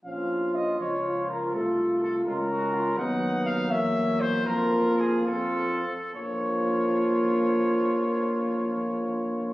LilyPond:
<<
  \new Staff \with { instrumentName = "Trumpet" } { \time 6/8 \key bes \minor \tempo 4. = 77 f''4 ees''8 des''4 bes'8 | a'4 a'8 bes'4. | fis''4 f''8 fes''4 c''8 | bes'4 aes'8 a'4. |
des''2.~ | des''2. | }
  \new Staff \with { instrumentName = "Trumpet" } { \time 6/8 \key bes \minor f'2. | f'4. f'8 ges'8 f'8 | dis'4. des'4. | f'4. f'4 r8 |
f'2.~ | f'2. | }
  \new Staff \with { instrumentName = "French horn" } { \time 6/8 \key bes \minor des'4. f'4. | f'4. des'4. | b4. bes4. | bes4. c'4 r8 |
bes2.~ | bes2. | }
  \new Staff \with { instrumentName = "Trombone" } { \clef bass \time 6/8 \key bes \minor f4. f4. | a4. aes4. | fis2. | f4. f4 r8 |
f2.~ | f2. | }
  \new Staff \with { instrumentName = "Tuba" } { \clef bass \time 6/8 \key bes \minor bes,,4. des,4. | c,4. des,4. | dis,4. fes,4. | f,4. f,4 r8 |
bes,,2.~ | bes,,2. | }
>>